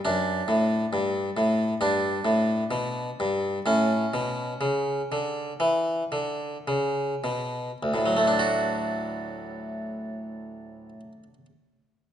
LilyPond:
<<
  \new Staff \with { instrumentName = "Harpsichord" } { \time 4/4 \key d \major \tempo 4 = 59 d'2 d'2 | cis'1 | <d, a, fis a d' fis'>1 | }
  \new Staff \with { instrumentName = "Harpsichord" } { \clef bass \time 4/4 \key d \major fis,8 a,8 g,8 a,8 g,8 a,8 b,8 g,8 | a,8 b,8 cis8 d8 e8 d8 cis8 b,8 | r1 | }
>>